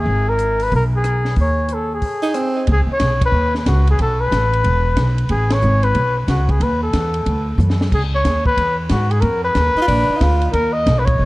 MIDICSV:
0, 0, Header, 1, 6, 480
1, 0, Start_track
1, 0, Tempo, 327511
1, 81, Time_signature, 4, 2, 24, 8
1, 16491, End_track
2, 0, Start_track
2, 0, Title_t, "Trumpet"
2, 0, Program_c, 0, 56
2, 0, Note_on_c, 0, 68, 86
2, 421, Note_on_c, 0, 70, 91
2, 443, Note_off_c, 0, 68, 0
2, 921, Note_on_c, 0, 71, 82
2, 943, Note_off_c, 0, 70, 0
2, 1066, Note_off_c, 0, 71, 0
2, 1109, Note_on_c, 0, 70, 78
2, 1232, Note_off_c, 0, 70, 0
2, 1412, Note_on_c, 0, 68, 81
2, 1988, Note_off_c, 0, 68, 0
2, 2063, Note_on_c, 0, 73, 80
2, 2541, Note_on_c, 0, 69, 70
2, 2563, Note_off_c, 0, 73, 0
2, 2819, Note_off_c, 0, 69, 0
2, 2850, Note_on_c, 0, 68, 71
2, 3721, Note_off_c, 0, 68, 0
2, 3987, Note_on_c, 0, 68, 84
2, 4111, Note_off_c, 0, 68, 0
2, 4291, Note_on_c, 0, 73, 95
2, 4708, Note_off_c, 0, 73, 0
2, 4768, Note_on_c, 0, 71, 95
2, 5187, Note_off_c, 0, 71, 0
2, 5387, Note_on_c, 0, 66, 76
2, 5661, Note_off_c, 0, 66, 0
2, 5726, Note_on_c, 0, 68, 80
2, 5859, Note_off_c, 0, 68, 0
2, 5886, Note_on_c, 0, 69, 86
2, 6161, Note_on_c, 0, 71, 94
2, 6183, Note_off_c, 0, 69, 0
2, 7594, Note_off_c, 0, 71, 0
2, 7777, Note_on_c, 0, 68, 84
2, 8105, Note_on_c, 0, 73, 93
2, 8127, Note_off_c, 0, 68, 0
2, 8556, Note_on_c, 0, 71, 92
2, 8578, Note_off_c, 0, 73, 0
2, 9031, Note_off_c, 0, 71, 0
2, 9226, Note_on_c, 0, 66, 69
2, 9533, Note_on_c, 0, 68, 73
2, 9555, Note_off_c, 0, 66, 0
2, 9713, Note_on_c, 0, 71, 83
2, 9735, Note_off_c, 0, 68, 0
2, 9999, Note_off_c, 0, 71, 0
2, 10008, Note_on_c, 0, 69, 77
2, 10958, Note_off_c, 0, 69, 0
2, 11641, Note_on_c, 0, 68, 73
2, 11770, Note_off_c, 0, 68, 0
2, 11941, Note_on_c, 0, 73, 84
2, 12370, Note_off_c, 0, 73, 0
2, 12404, Note_on_c, 0, 71, 97
2, 12841, Note_off_c, 0, 71, 0
2, 13060, Note_on_c, 0, 66, 79
2, 13354, Note_on_c, 0, 68, 74
2, 13376, Note_off_c, 0, 66, 0
2, 13498, Note_on_c, 0, 70, 83
2, 13520, Note_off_c, 0, 68, 0
2, 13815, Note_off_c, 0, 70, 0
2, 13839, Note_on_c, 0, 71, 99
2, 15213, Note_off_c, 0, 71, 0
2, 15421, Note_on_c, 0, 70, 96
2, 15727, Note_on_c, 0, 75, 99
2, 15749, Note_off_c, 0, 70, 0
2, 16107, Note_on_c, 0, 71, 81
2, 16129, Note_off_c, 0, 75, 0
2, 16200, Note_on_c, 0, 73, 95
2, 16222, Note_off_c, 0, 71, 0
2, 16491, Note_off_c, 0, 73, 0
2, 16491, End_track
3, 0, Start_track
3, 0, Title_t, "Tenor saxophone"
3, 0, Program_c, 1, 66
3, 3262, Note_on_c, 1, 63, 83
3, 3437, Note_on_c, 1, 60, 75
3, 3459, Note_off_c, 1, 63, 0
3, 3919, Note_off_c, 1, 60, 0
3, 14317, Note_on_c, 1, 63, 84
3, 14375, Note_off_c, 1, 63, 0
3, 14384, Note_on_c, 1, 65, 93
3, 14466, Note_off_c, 1, 65, 0
3, 14475, Note_on_c, 1, 62, 92
3, 14891, Note_on_c, 1, 63, 89
3, 14913, Note_off_c, 1, 62, 0
3, 14975, Note_on_c, 1, 65, 87
3, 14997, Note_off_c, 1, 63, 0
3, 15359, Note_off_c, 1, 65, 0
3, 16491, End_track
4, 0, Start_track
4, 0, Title_t, "Upright bass"
4, 0, Program_c, 2, 32
4, 82, Note_on_c, 2, 32, 70
4, 993, Note_off_c, 2, 32, 0
4, 1056, Note_on_c, 2, 35, 74
4, 1960, Note_off_c, 2, 35, 0
4, 2002, Note_on_c, 2, 39, 69
4, 2913, Note_off_c, 2, 39, 0
4, 3923, Note_on_c, 2, 37, 75
4, 4193, Note_off_c, 2, 37, 0
4, 4399, Note_on_c, 2, 35, 79
4, 4853, Note_off_c, 2, 35, 0
4, 4862, Note_on_c, 2, 39, 72
4, 5336, Note_off_c, 2, 39, 0
4, 5366, Note_on_c, 2, 37, 87
4, 5829, Note_off_c, 2, 37, 0
4, 5850, Note_on_c, 2, 35, 64
4, 6311, Note_off_c, 2, 35, 0
4, 6324, Note_on_c, 2, 33, 79
4, 6787, Note_off_c, 2, 33, 0
4, 6801, Note_on_c, 2, 28, 74
4, 7266, Note_off_c, 2, 28, 0
4, 7277, Note_on_c, 2, 35, 78
4, 7744, Note_off_c, 2, 35, 0
4, 7761, Note_on_c, 2, 33, 68
4, 8226, Note_off_c, 2, 33, 0
4, 8245, Note_on_c, 2, 32, 83
4, 8708, Note_off_c, 2, 32, 0
4, 8717, Note_on_c, 2, 35, 76
4, 9183, Note_off_c, 2, 35, 0
4, 9200, Note_on_c, 2, 37, 80
4, 9665, Note_off_c, 2, 37, 0
4, 9675, Note_on_c, 2, 39, 70
4, 10142, Note_off_c, 2, 39, 0
4, 10161, Note_on_c, 2, 40, 81
4, 10625, Note_off_c, 2, 40, 0
4, 10641, Note_on_c, 2, 38, 72
4, 11100, Note_off_c, 2, 38, 0
4, 11109, Note_on_c, 2, 42, 86
4, 11578, Note_off_c, 2, 42, 0
4, 11607, Note_on_c, 2, 37, 69
4, 12067, Note_off_c, 2, 37, 0
4, 12089, Note_on_c, 2, 39, 76
4, 12548, Note_off_c, 2, 39, 0
4, 12565, Note_on_c, 2, 40, 73
4, 13026, Note_off_c, 2, 40, 0
4, 13046, Note_on_c, 2, 44, 86
4, 13507, Note_off_c, 2, 44, 0
4, 13517, Note_on_c, 2, 41, 72
4, 13982, Note_off_c, 2, 41, 0
4, 14001, Note_on_c, 2, 39, 78
4, 14285, Note_off_c, 2, 39, 0
4, 14476, Note_on_c, 2, 34, 77
4, 14762, Note_off_c, 2, 34, 0
4, 14960, Note_on_c, 2, 38, 84
4, 15423, Note_off_c, 2, 38, 0
4, 15435, Note_on_c, 2, 39, 78
4, 15901, Note_off_c, 2, 39, 0
4, 15922, Note_on_c, 2, 35, 87
4, 16385, Note_off_c, 2, 35, 0
4, 16402, Note_on_c, 2, 34, 73
4, 16491, Note_off_c, 2, 34, 0
4, 16491, End_track
5, 0, Start_track
5, 0, Title_t, "Muted upright bass strokes"
5, 4202, Note_on_c, 9, 29, 43
5, 4348, Note_off_c, 9, 29, 0
5, 14292, Note_on_c, 9, 29, 39
5, 14438, Note_off_c, 9, 29, 0
5, 14784, Note_on_c, 9, 29, 38
5, 14931, Note_off_c, 9, 29, 0
5, 16491, End_track
6, 0, Start_track
6, 0, Title_t, "Drums"
6, 568, Note_on_c, 9, 42, 44
6, 714, Note_off_c, 9, 42, 0
6, 875, Note_on_c, 9, 46, 36
6, 1021, Note_off_c, 9, 46, 0
6, 1051, Note_on_c, 9, 36, 31
6, 1052, Note_on_c, 9, 46, 43
6, 1198, Note_off_c, 9, 36, 0
6, 1199, Note_off_c, 9, 46, 0
6, 1524, Note_on_c, 9, 42, 49
6, 1525, Note_on_c, 9, 37, 54
6, 1670, Note_off_c, 9, 42, 0
6, 1672, Note_off_c, 9, 37, 0
6, 1830, Note_on_c, 9, 38, 28
6, 1977, Note_off_c, 9, 38, 0
6, 1996, Note_on_c, 9, 46, 43
6, 2001, Note_on_c, 9, 36, 29
6, 2143, Note_off_c, 9, 46, 0
6, 2148, Note_off_c, 9, 36, 0
6, 2471, Note_on_c, 9, 42, 45
6, 2617, Note_off_c, 9, 42, 0
6, 2958, Note_on_c, 9, 46, 40
6, 2960, Note_on_c, 9, 36, 31
6, 3104, Note_off_c, 9, 46, 0
6, 3106, Note_off_c, 9, 36, 0
6, 3433, Note_on_c, 9, 42, 48
6, 3435, Note_on_c, 9, 37, 53
6, 3580, Note_off_c, 9, 42, 0
6, 3581, Note_off_c, 9, 37, 0
6, 3912, Note_on_c, 9, 51, 52
6, 3920, Note_on_c, 9, 36, 22
6, 4059, Note_off_c, 9, 51, 0
6, 4066, Note_off_c, 9, 36, 0
6, 4392, Note_on_c, 9, 44, 47
6, 4392, Note_on_c, 9, 51, 64
6, 4393, Note_on_c, 9, 38, 62
6, 4400, Note_on_c, 9, 36, 17
6, 4538, Note_off_c, 9, 44, 0
6, 4538, Note_off_c, 9, 51, 0
6, 4540, Note_off_c, 9, 38, 0
6, 4547, Note_off_c, 9, 36, 0
6, 4711, Note_on_c, 9, 36, 79
6, 4713, Note_on_c, 9, 51, 77
6, 4858, Note_off_c, 9, 36, 0
6, 4859, Note_off_c, 9, 51, 0
6, 5199, Note_on_c, 9, 38, 36
6, 5346, Note_off_c, 9, 38, 0
6, 5365, Note_on_c, 9, 36, 19
6, 5367, Note_on_c, 9, 44, 49
6, 5367, Note_on_c, 9, 51, 66
6, 5368, Note_on_c, 9, 38, 64
6, 5511, Note_off_c, 9, 36, 0
6, 5514, Note_off_c, 9, 44, 0
6, 5514, Note_off_c, 9, 51, 0
6, 5515, Note_off_c, 9, 38, 0
6, 5677, Note_on_c, 9, 51, 41
6, 5824, Note_off_c, 9, 51, 0
6, 5845, Note_on_c, 9, 51, 56
6, 5847, Note_on_c, 9, 36, 22
6, 5991, Note_off_c, 9, 51, 0
6, 5993, Note_off_c, 9, 36, 0
6, 6328, Note_on_c, 9, 36, 22
6, 6334, Note_on_c, 9, 44, 53
6, 6334, Note_on_c, 9, 51, 56
6, 6335, Note_on_c, 9, 38, 66
6, 6474, Note_off_c, 9, 36, 0
6, 6480, Note_off_c, 9, 44, 0
6, 6480, Note_off_c, 9, 51, 0
6, 6482, Note_off_c, 9, 38, 0
6, 6645, Note_on_c, 9, 51, 42
6, 6792, Note_off_c, 9, 51, 0
6, 6805, Note_on_c, 9, 36, 23
6, 6805, Note_on_c, 9, 51, 57
6, 6951, Note_off_c, 9, 51, 0
6, 6952, Note_off_c, 9, 36, 0
6, 7279, Note_on_c, 9, 44, 53
6, 7279, Note_on_c, 9, 51, 68
6, 7281, Note_on_c, 9, 36, 24
6, 7281, Note_on_c, 9, 38, 68
6, 7426, Note_off_c, 9, 44, 0
6, 7426, Note_off_c, 9, 51, 0
6, 7427, Note_off_c, 9, 38, 0
6, 7428, Note_off_c, 9, 36, 0
6, 7594, Note_on_c, 9, 51, 42
6, 7741, Note_off_c, 9, 51, 0
6, 7753, Note_on_c, 9, 51, 54
6, 7760, Note_on_c, 9, 36, 19
6, 7899, Note_off_c, 9, 51, 0
6, 7907, Note_off_c, 9, 36, 0
6, 8067, Note_on_c, 9, 51, 62
6, 8068, Note_on_c, 9, 38, 75
6, 8213, Note_off_c, 9, 51, 0
6, 8215, Note_off_c, 9, 38, 0
6, 8233, Note_on_c, 9, 44, 51
6, 8379, Note_off_c, 9, 44, 0
6, 8543, Note_on_c, 9, 51, 39
6, 8690, Note_off_c, 9, 51, 0
6, 8715, Note_on_c, 9, 51, 53
6, 8719, Note_on_c, 9, 36, 24
6, 8861, Note_off_c, 9, 51, 0
6, 8866, Note_off_c, 9, 36, 0
6, 9201, Note_on_c, 9, 36, 25
6, 9205, Note_on_c, 9, 44, 53
6, 9205, Note_on_c, 9, 51, 64
6, 9206, Note_on_c, 9, 38, 62
6, 9347, Note_off_c, 9, 36, 0
6, 9351, Note_off_c, 9, 44, 0
6, 9351, Note_off_c, 9, 51, 0
6, 9353, Note_off_c, 9, 38, 0
6, 9510, Note_on_c, 9, 36, 55
6, 9513, Note_on_c, 9, 51, 40
6, 9657, Note_off_c, 9, 36, 0
6, 9660, Note_off_c, 9, 51, 0
6, 9682, Note_on_c, 9, 36, 22
6, 9683, Note_on_c, 9, 51, 58
6, 9828, Note_off_c, 9, 36, 0
6, 9829, Note_off_c, 9, 51, 0
6, 10162, Note_on_c, 9, 44, 53
6, 10162, Note_on_c, 9, 51, 62
6, 10163, Note_on_c, 9, 36, 23
6, 10163, Note_on_c, 9, 38, 66
6, 10308, Note_off_c, 9, 44, 0
6, 10308, Note_off_c, 9, 51, 0
6, 10309, Note_off_c, 9, 36, 0
6, 10310, Note_off_c, 9, 38, 0
6, 10463, Note_on_c, 9, 51, 44
6, 10610, Note_off_c, 9, 51, 0
6, 10644, Note_on_c, 9, 51, 57
6, 10647, Note_on_c, 9, 36, 25
6, 10791, Note_off_c, 9, 51, 0
6, 10794, Note_off_c, 9, 36, 0
6, 11128, Note_on_c, 9, 44, 61
6, 11130, Note_on_c, 9, 47, 43
6, 11275, Note_off_c, 9, 44, 0
6, 11276, Note_off_c, 9, 47, 0
6, 11284, Note_on_c, 9, 38, 57
6, 11430, Note_off_c, 9, 38, 0
6, 11447, Note_on_c, 9, 38, 70
6, 11594, Note_off_c, 9, 38, 0
6, 11609, Note_on_c, 9, 36, 64
6, 11611, Note_on_c, 9, 49, 69
6, 11756, Note_off_c, 9, 36, 0
6, 11757, Note_off_c, 9, 49, 0
6, 12086, Note_on_c, 9, 36, 25
6, 12090, Note_on_c, 9, 44, 45
6, 12090, Note_on_c, 9, 51, 61
6, 12091, Note_on_c, 9, 38, 67
6, 12233, Note_off_c, 9, 36, 0
6, 12236, Note_off_c, 9, 44, 0
6, 12236, Note_off_c, 9, 51, 0
6, 12238, Note_off_c, 9, 38, 0
6, 12393, Note_on_c, 9, 36, 55
6, 12540, Note_off_c, 9, 36, 0
6, 12564, Note_on_c, 9, 36, 23
6, 12568, Note_on_c, 9, 51, 63
6, 12711, Note_off_c, 9, 36, 0
6, 12715, Note_off_c, 9, 51, 0
6, 13035, Note_on_c, 9, 44, 57
6, 13035, Note_on_c, 9, 51, 70
6, 13037, Note_on_c, 9, 38, 69
6, 13041, Note_on_c, 9, 36, 18
6, 13182, Note_off_c, 9, 44, 0
6, 13182, Note_off_c, 9, 51, 0
6, 13184, Note_off_c, 9, 38, 0
6, 13188, Note_off_c, 9, 36, 0
6, 13350, Note_on_c, 9, 51, 43
6, 13496, Note_off_c, 9, 51, 0
6, 13513, Note_on_c, 9, 51, 58
6, 13518, Note_on_c, 9, 36, 21
6, 13660, Note_off_c, 9, 51, 0
6, 13665, Note_off_c, 9, 36, 0
6, 13995, Note_on_c, 9, 44, 56
6, 13995, Note_on_c, 9, 51, 56
6, 13997, Note_on_c, 9, 38, 64
6, 13998, Note_on_c, 9, 36, 18
6, 14142, Note_off_c, 9, 44, 0
6, 14142, Note_off_c, 9, 51, 0
6, 14143, Note_off_c, 9, 38, 0
6, 14145, Note_off_c, 9, 36, 0
6, 14480, Note_on_c, 9, 36, 17
6, 14486, Note_on_c, 9, 51, 56
6, 14627, Note_off_c, 9, 36, 0
6, 14632, Note_off_c, 9, 51, 0
6, 14960, Note_on_c, 9, 36, 27
6, 14961, Note_on_c, 9, 44, 53
6, 14961, Note_on_c, 9, 51, 62
6, 14963, Note_on_c, 9, 38, 69
6, 15107, Note_off_c, 9, 36, 0
6, 15108, Note_off_c, 9, 44, 0
6, 15108, Note_off_c, 9, 51, 0
6, 15109, Note_off_c, 9, 38, 0
6, 15265, Note_on_c, 9, 51, 42
6, 15411, Note_off_c, 9, 51, 0
6, 15439, Note_on_c, 9, 51, 62
6, 15441, Note_on_c, 9, 36, 24
6, 15585, Note_off_c, 9, 51, 0
6, 15588, Note_off_c, 9, 36, 0
6, 15922, Note_on_c, 9, 36, 17
6, 15924, Note_on_c, 9, 44, 51
6, 15924, Note_on_c, 9, 51, 68
6, 15925, Note_on_c, 9, 38, 61
6, 16068, Note_off_c, 9, 36, 0
6, 16070, Note_off_c, 9, 44, 0
6, 16070, Note_off_c, 9, 51, 0
6, 16072, Note_off_c, 9, 38, 0
6, 16230, Note_on_c, 9, 51, 68
6, 16231, Note_on_c, 9, 36, 81
6, 16376, Note_off_c, 9, 51, 0
6, 16378, Note_off_c, 9, 36, 0
6, 16491, End_track
0, 0, End_of_file